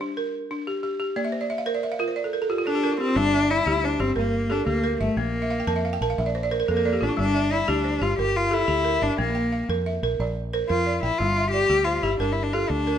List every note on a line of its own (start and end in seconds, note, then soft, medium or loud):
0.00 0.33 D4 medium
0.00 0.33 C5 medium
0.17 0.67 A#4 medium
0.51 0.84 D4 medium
0.67 0.82 G4 medium
0.83 0.98 G4 medium
1.00 1.33 G4 medium
1.16 1.50 A#3 medium
1.16 1.32 D5 medium
1.25 1.40 E5 medium
1.32 1.48 C5 medium
1.41 1.57 D5 medium
1.50 1.65 E5 medium
1.58 1.74 F5 medium
1.66 1.98 A#4 medium
1.66 1.82 C5 medium
1.75 1.90 D5 medium
1.83 1.99 E5 medium
1.92 2.07 F5 medium
1.99 2.33 F4 medium
1.99 2.15 A#4 medium
2.08 2.24 C5 medium
2.16 2.32 D5 medium
2.24 2.40 A4 medium
2.33 2.49 A#4 medium
2.42 2.57 A4 medium
2.50 2.57 F4 medium
2.50 2.65 G4 medium
2.58 2.74 F4 medium
2.67 2.98 D4 medium
2.67 2.82 A4 medium
2.75 2.91 G4 medium
2.83 2.99 F4 medium
2.83 3.17 A#4 medium
2.92 3.08 E4 medium
3.01 3.18 C4 medium
3.01 3.16 G4 medium
3.09 3.24 F4 medium
3.16 3.60 G1 medium
3.16 3.51 G3 medium
3.16 3.52 D4 loud
3.34 3.84 E5 medium
3.51 3.86 E4 loud
3.51 4.01 D5 medium
3.66 3.96 D2 medium
3.66 3.98 G4 medium
3.84 4.02 D4 medium
3.84 4.34 C5 medium
4.00 4.15 G1 medium
4.00 4.17 C4 medium
4.00 4.34 G4 medium
4.16 4.60 G1 medium
4.16 4.53 A#3 medium
4.16 4.67 A#4 medium
4.50 4.67 D4 medium
4.50 4.65 G4 medium
4.50 5.00 A4 medium
4.67 4.96 D2 medium
4.67 4.99 A#3 medium
4.67 5.17 G4 medium
4.84 5.17 A#4 medium
5.00 5.08 G1 medium
5.00 5.20 A3 medium
5.00 5.34 E5 medium
5.17 5.61 A#1 medium
5.17 5.51 A#3 medium
5.17 5.85 A#3 medium
5.42 5.58 E5 medium
5.51 5.66 F5 medium
5.60 5.75 G5 medium
5.67 5.97 F2 medium
5.67 6.01 A#4 medium
5.67 5.83 A5 medium
5.76 5.92 E5 medium
5.85 6.00 F5 medium
5.93 6.08 G5 medium
6.01 6.16 A#1 medium
6.01 6.35 A#4 medium
6.01 6.17 A5 medium
6.10 6.25 F5 medium
6.18 6.62 A#1 medium
6.18 6.34 E5 medium
6.26 6.42 D5 medium
6.35 6.50 C5 medium
6.43 6.59 D5 medium
6.51 6.59 A#4 medium
6.51 6.67 C5 medium
6.60 6.75 A#4 medium
6.68 6.97 F2 medium
6.68 7.05 A#3 medium
6.68 6.84 A4 medium
6.77 6.92 A#4 medium
6.85 7.00 A4 medium
6.85 7.18 D5 medium
6.93 7.08 G4 medium
7.01 7.09 A1 medium
7.01 7.19 D4 medium
7.01 7.16 F4 medium
7.09 7.25 E4 medium
7.17 7.62 G1 medium
7.17 7.51 G3 medium
7.17 7.54 D4 loud
7.34 7.85 E5 medium
7.51 7.70 E4 medium
7.51 8.01 D5 medium
7.68 7.97 D2 medium
7.68 8.04 D4 medium
7.68 8.00 G4 medium
7.84 8.35 C5 medium
8.01 8.16 G1 medium
8.01 8.19 F4 medium
8.01 8.35 G4 medium
8.18 8.62 G1 medium
8.18 8.38 G4 medium
8.18 8.69 A#4 medium
8.36 8.55 F4 medium
8.51 9.04 E4 loud
8.51 8.67 G4 medium
8.51 9.02 A4 medium
8.68 8.97 D2 medium
8.68 9.18 G4 medium
8.85 9.18 A#4 medium
9.02 9.09 G1 medium
9.02 9.19 D4 medium
9.02 9.35 E5 medium
9.18 9.62 A#1 loud
9.18 9.52 A#3 medium
9.18 9.66 A#3 medium
9.35 9.85 G5 medium
9.52 10.02 F5 medium
9.69 9.98 F2 medium
9.69 10.02 A#4 medium
9.86 10.36 E5 medium
10.03 10.17 A#1 medium
10.03 10.36 A#4 medium
10.19 10.63 A#1 medium
10.19 10.70 D5 medium
10.53 10.68 A#4 medium
10.53 11.03 C5 medium
10.69 10.99 F2 medium
10.69 11.00 F4 medium
10.69 11.20 A#4 medium
10.86 11.20 D5 medium
11.03 11.10 A#1 medium
11.03 11.20 E4 medium
11.03 11.36 G5 medium
11.18 11.64 G1 medium
11.18 11.53 G3 medium
11.18 11.50 F4 loud
11.37 11.87 E5 medium
11.51 11.86 G4 loud
11.51 12.03 D5 medium
11.70 11.99 D2 medium
11.70 12.02 G4 medium
11.85 12.04 F4 medium
11.85 12.37 C5 medium
12.03 12.18 G1 medium
12.03 12.19 E4 medium
12.03 12.37 G4 medium
12.19 12.64 G1 medium
12.19 12.34 D4 medium
12.19 12.70 A#4 medium
12.32 12.44 E4 medium
12.43 12.55 D4 medium
12.53 12.71 F4 medium
12.53 12.87 G4 medium
12.53 12.98 A4 medium
12.70 12.98 D2 medium
12.70 12.98 D4 medium
12.87 12.98 A#4 medium